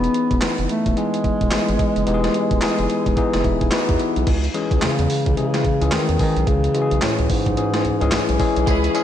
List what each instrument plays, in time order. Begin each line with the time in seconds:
Already playing: tine electric piano E3 B3 D#4 G#4, bass clarinet B3
0.04 closed hi-hat
0.14 closed hi-hat
0.31 analog synth bass E1, kick, closed hi-hat
0.41 analog synth bass F#1, tine electric piano E3 B3 D#4 B4, snare, clap, closed hi-hat
0.58 analog synth bass F#1, closed hi-hat
0.69 bass clarinet A3, closed hi-hat
0.86 analog synth bass E1, kick, closed hi-hat
0.96 tine electric piano E3 B3 D#4 G#4, bass clarinet G#3, closed hi-hat
1.14 closed hi-hat
1.24 analog synth bass E1, kick, closed hi-hat
1.41 analog synth bass E1, kick, closed hi-hat
1.51 analog synth bass G#1, tine electric piano E3 B3 D#4 G#4, snare, clap, closed hi-hat
1.68 analog synth bass G#1, closed hi-hat
1.79 kick, closed hi-hat
1.96 analog synth bass F#1, closed hi-hat
2.06 analog synth bass E1, tine electric piano E3 B3 D#4 G4, closed hi-hat
2.14 tine electric piano G#4
2.24 snare, closed hi-hat
2.34 closed hi-hat
2.51 analog synth bass E1, kick, closed hi-hat
2.61 analog synth bass F#1, tine electric piano E3 B3 D#4 G#4, snare, clap, closed hi-hat
2.79 analog synth bass F#1, closed hi-hat
2.90 closed hi-hat
3.06 analog synth bass E1, kick, closed hi-hat
3.16 tine electric piano E3 B3 D#4 G#4, kick, closed hi-hat
3.33 analog synth bass F#1, snare, closed hi-hat
3.44 analog synth bass E1, tine electric piano E5, kick, closed hi-hat
3.61 analog synth bass E1, tine electric piano G#5, kick, closed hi-hat
3.71 tine electric piano E3 B3 D#4 F#4 B5, snare, clap, closed hi-hat
3.89 analog synth bass E2, kick, closed hi-hat
3.99 closed hi-hat
4.16 analog synth bass B1, closed hi-hat
4.27 analog synth bass C#2, kick, closed hi-hat, crash
4.44 closed hi-hat
4.54 tine electric piano E3 G#3 C#4 G#4, closed hi-hat
4.71 analog synth bass C#2, kick, closed hi-hat
4.82 analog synth bass E2, bass clarinet C#3, snare, clap, closed hi-hat
4.99 analog synth bass E2, closed hi-hat
5.10 open hi-hat
5.26 analog synth bass C#2, kick, closed hi-hat
5.36 bass clarinet C#3, tine electric piano E3 G#3 C#4 G#4, closed hi-hat
5.54 snare, closed hi-hat
5.64 analog synth bass C#2, kick, closed hi-hat
5.81 analog synth bass C#2, tine electric piano E3 G#3 C#4 G#4, closed hi-hat
5.92 analog synth bass E2, bass clarinet D#3, snare, clap, closed hi-hat
6.09 analog synth bass E2, closed hi-hat
6.19 bass clarinet D#3, tine electric piano E3 G#3 C#4 G#4, kick, open hi-hat
6.36 analog synth bass B1, closed hi-hat
6.47 analog synth bass C#2, bass clarinet C#3, kick, closed hi-hat
6.64 closed hi-hat
6.74 tine electric piano E3 G#3 C#4 F#4, closed hi-hat
6.82 tine electric piano G#4
6.91 analog synth bass B1, closed hi-hat
7.02 analog synth bass C#2, bass clarinet A2, snare, clap, closed hi-hat
7.19 analog synth bass C#2, closed hi-hat
7.30 bass clarinet G#2, kick, open hi-hat
7.46 analog synth bass B1, kick, closed hi-hat
7.56 tine electric piano E3 G#3 C#4 G#4, closed hi-hat
7.74 snare, closed hi-hat
7.85 analog synth bass C#2, closed hi-hat
8.01 analog synth bass C#2, tine electric piano E3 G#3 C#4 G#4, closed hi-hat
8.11 analog synth bass B1, snare, clap, closed hi-hat
8.29 analog synth bass B1, closed hi-hat
8.39 tine electric piano E3 G#3 C#4 G#4, kick, open hi-hat
8.56 analog synth bass B1, closed hi-hat
8.67 analog synth bass C#2, string section G#3 C#4 E4 G#4, kick, closed hi-hat, tambourine
8.84 closed hi-hat
8.94 tine electric piano E3 G#3 C#4 G#4, closed hi-hat, tambourine